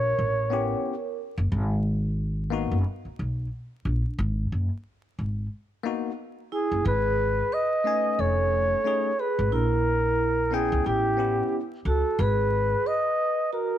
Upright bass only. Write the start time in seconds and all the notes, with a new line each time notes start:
Already playing: A#1
0.18 A1
1.38 F#1
1.52 G#1
2.72 F#1
3.05 muted upright bass stroke
3.19 B1
3.85 A#1
4.19 G#1
4.52 F#1
5.19 G#1
6.71 F#1
6.85 G#1
8.19 F1
9.39 G#1
9.52 A#1
10.72 C#2
10.86 A1
11.85 C#2
12.19 G#1